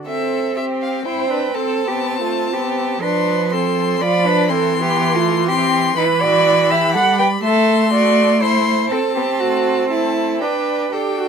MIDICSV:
0, 0, Header, 1, 5, 480
1, 0, Start_track
1, 0, Tempo, 491803
1, 59, Time_signature, 3, 2, 24, 8
1, 9178, Tempo, 507614
1, 10956, End_track
2, 0, Start_track
2, 0, Title_t, "Violin"
2, 0, Program_c, 0, 40
2, 72, Note_on_c, 0, 76, 43
2, 519, Note_off_c, 0, 76, 0
2, 553, Note_on_c, 0, 76, 45
2, 631, Note_off_c, 0, 76, 0
2, 800, Note_on_c, 0, 77, 40
2, 1025, Note_off_c, 0, 77, 0
2, 1031, Note_on_c, 0, 79, 47
2, 1510, Note_on_c, 0, 81, 51
2, 1525, Note_off_c, 0, 79, 0
2, 2950, Note_off_c, 0, 81, 0
2, 2956, Note_on_c, 0, 84, 50
2, 3429, Note_off_c, 0, 84, 0
2, 3443, Note_on_c, 0, 84, 59
2, 3924, Note_on_c, 0, 83, 68
2, 3938, Note_off_c, 0, 84, 0
2, 4390, Note_on_c, 0, 84, 63
2, 4404, Note_off_c, 0, 83, 0
2, 5343, Note_off_c, 0, 84, 0
2, 5357, Note_on_c, 0, 84, 70
2, 5820, Note_on_c, 0, 83, 65
2, 5835, Note_off_c, 0, 84, 0
2, 7252, Note_off_c, 0, 83, 0
2, 7258, Note_on_c, 0, 84, 63
2, 8200, Note_off_c, 0, 84, 0
2, 8220, Note_on_c, 0, 84, 55
2, 8691, Note_off_c, 0, 84, 0
2, 8702, Note_on_c, 0, 81, 52
2, 9616, Note_off_c, 0, 81, 0
2, 9659, Note_on_c, 0, 81, 52
2, 10126, Note_off_c, 0, 81, 0
2, 10136, Note_on_c, 0, 79, 43
2, 10607, Note_off_c, 0, 79, 0
2, 10615, Note_on_c, 0, 79, 43
2, 10956, Note_off_c, 0, 79, 0
2, 10956, End_track
3, 0, Start_track
3, 0, Title_t, "Cello"
3, 0, Program_c, 1, 42
3, 61, Note_on_c, 1, 69, 58
3, 549, Note_on_c, 1, 67, 49
3, 563, Note_off_c, 1, 69, 0
3, 1018, Note_off_c, 1, 67, 0
3, 1024, Note_on_c, 1, 72, 59
3, 1268, Note_on_c, 1, 71, 57
3, 1282, Note_off_c, 1, 72, 0
3, 1505, Note_on_c, 1, 69, 65
3, 1519, Note_off_c, 1, 71, 0
3, 1830, Note_on_c, 1, 67, 55
3, 1844, Note_off_c, 1, 69, 0
3, 2151, Note_off_c, 1, 67, 0
3, 2157, Note_on_c, 1, 65, 54
3, 2466, Note_on_c, 1, 67, 66
3, 2481, Note_off_c, 1, 65, 0
3, 2952, Note_on_c, 1, 71, 68
3, 2966, Note_off_c, 1, 67, 0
3, 3434, Note_on_c, 1, 69, 69
3, 3448, Note_off_c, 1, 71, 0
3, 3913, Note_on_c, 1, 74, 81
3, 3928, Note_off_c, 1, 69, 0
3, 4153, Note_on_c, 1, 71, 82
3, 4168, Note_off_c, 1, 74, 0
3, 4388, Note_off_c, 1, 71, 0
3, 4394, Note_on_c, 1, 69, 78
3, 4705, Note_off_c, 1, 69, 0
3, 4713, Note_on_c, 1, 67, 80
3, 5030, Note_on_c, 1, 65, 73
3, 5044, Note_off_c, 1, 67, 0
3, 5350, Note_on_c, 1, 67, 84
3, 5365, Note_off_c, 1, 65, 0
3, 5817, Note_off_c, 1, 67, 0
3, 5823, Note_on_c, 1, 71, 82
3, 6063, Note_on_c, 1, 74, 91
3, 6077, Note_off_c, 1, 71, 0
3, 6541, Note_on_c, 1, 76, 75
3, 6556, Note_off_c, 1, 74, 0
3, 6771, Note_off_c, 1, 76, 0
3, 6777, Note_on_c, 1, 78, 85
3, 7012, Note_off_c, 1, 78, 0
3, 7016, Note_on_c, 1, 79, 90
3, 7094, Note_off_c, 1, 79, 0
3, 7255, Note_on_c, 1, 76, 76
3, 7727, Note_off_c, 1, 76, 0
3, 7738, Note_on_c, 1, 74, 82
3, 8219, Note_on_c, 1, 72, 73
3, 8233, Note_off_c, 1, 74, 0
3, 8702, Note_on_c, 1, 69, 65
3, 8717, Note_off_c, 1, 72, 0
3, 8934, Note_off_c, 1, 69, 0
3, 8940, Note_on_c, 1, 67, 61
3, 9177, Note_on_c, 1, 66, 70
3, 9191, Note_off_c, 1, 67, 0
3, 9648, Note_off_c, 1, 66, 0
3, 9653, Note_on_c, 1, 64, 65
3, 10133, Note_on_c, 1, 71, 61
3, 10148, Note_off_c, 1, 64, 0
3, 10615, Note_on_c, 1, 69, 49
3, 10629, Note_off_c, 1, 71, 0
3, 10956, Note_off_c, 1, 69, 0
3, 10956, End_track
4, 0, Start_track
4, 0, Title_t, "Violin"
4, 0, Program_c, 2, 40
4, 61, Note_on_c, 2, 60, 47
4, 513, Note_off_c, 2, 60, 0
4, 535, Note_on_c, 2, 60, 46
4, 1030, Note_on_c, 2, 64, 54
4, 1045, Note_off_c, 2, 60, 0
4, 1267, Note_off_c, 2, 64, 0
4, 1273, Note_on_c, 2, 62, 49
4, 1504, Note_off_c, 2, 62, 0
4, 1510, Note_on_c, 2, 60, 46
4, 1821, Note_off_c, 2, 60, 0
4, 1827, Note_on_c, 2, 59, 52
4, 2154, Note_on_c, 2, 57, 55
4, 2169, Note_off_c, 2, 59, 0
4, 2468, Note_off_c, 2, 57, 0
4, 2474, Note_on_c, 2, 59, 54
4, 2947, Note_off_c, 2, 59, 0
4, 2958, Note_on_c, 2, 62, 65
4, 3430, Note_off_c, 2, 62, 0
4, 3454, Note_on_c, 2, 60, 59
4, 3921, Note_on_c, 2, 65, 67
4, 3935, Note_off_c, 2, 60, 0
4, 4148, Note_on_c, 2, 62, 78
4, 4163, Note_off_c, 2, 65, 0
4, 4390, Note_on_c, 2, 60, 61
4, 4404, Note_off_c, 2, 62, 0
4, 4704, Note_on_c, 2, 59, 70
4, 4719, Note_off_c, 2, 60, 0
4, 5025, Note_on_c, 2, 57, 67
4, 5040, Note_off_c, 2, 59, 0
4, 5343, Note_off_c, 2, 57, 0
4, 5350, Note_on_c, 2, 60, 76
4, 5815, Note_off_c, 2, 60, 0
4, 5828, Note_on_c, 2, 64, 66
4, 5906, Note_off_c, 2, 64, 0
4, 6067, Note_on_c, 2, 66, 79
4, 6553, Note_on_c, 2, 67, 64
4, 6567, Note_off_c, 2, 66, 0
4, 6780, Note_on_c, 2, 69, 67
4, 6795, Note_off_c, 2, 67, 0
4, 7009, Note_off_c, 2, 69, 0
4, 7015, Note_on_c, 2, 71, 76
4, 7093, Note_off_c, 2, 71, 0
4, 7262, Note_on_c, 2, 69, 72
4, 7731, Note_off_c, 2, 69, 0
4, 7746, Note_on_c, 2, 66, 72
4, 8206, Note_off_c, 2, 66, 0
4, 8212, Note_on_c, 2, 64, 64
4, 8686, Note_off_c, 2, 64, 0
4, 8698, Note_on_c, 2, 60, 54
4, 8776, Note_off_c, 2, 60, 0
4, 8945, Note_on_c, 2, 59, 56
4, 9024, Note_off_c, 2, 59, 0
4, 9179, Note_on_c, 2, 57, 55
4, 9644, Note_off_c, 2, 57, 0
4, 9651, Note_on_c, 2, 57, 55
4, 10126, Note_on_c, 2, 62, 47
4, 10140, Note_off_c, 2, 57, 0
4, 10612, Note_off_c, 2, 62, 0
4, 10617, Note_on_c, 2, 62, 41
4, 10956, Note_off_c, 2, 62, 0
4, 10956, End_track
5, 0, Start_track
5, 0, Title_t, "Viola"
5, 0, Program_c, 3, 41
5, 58, Note_on_c, 3, 60, 45
5, 991, Note_off_c, 3, 60, 0
5, 1028, Note_on_c, 3, 60, 50
5, 1502, Note_off_c, 3, 60, 0
5, 1506, Note_on_c, 3, 60, 43
5, 2926, Note_off_c, 3, 60, 0
5, 2947, Note_on_c, 3, 53, 51
5, 3893, Note_off_c, 3, 53, 0
5, 3914, Note_on_c, 3, 53, 68
5, 4382, Note_on_c, 3, 52, 64
5, 4397, Note_off_c, 3, 53, 0
5, 5813, Note_off_c, 3, 52, 0
5, 5819, Note_on_c, 3, 52, 65
5, 6780, Note_on_c, 3, 55, 70
5, 6795, Note_off_c, 3, 52, 0
5, 7258, Note_off_c, 3, 55, 0
5, 7263, Note_on_c, 3, 57, 68
5, 8674, Note_off_c, 3, 57, 0
5, 8699, Note_on_c, 3, 60, 62
5, 10132, Note_on_c, 3, 62, 42
5, 10146, Note_off_c, 3, 60, 0
5, 10566, Note_off_c, 3, 62, 0
5, 10611, Note_on_c, 3, 67, 44
5, 10851, Note_on_c, 3, 66, 51
5, 10866, Note_off_c, 3, 67, 0
5, 10956, Note_off_c, 3, 66, 0
5, 10956, End_track
0, 0, End_of_file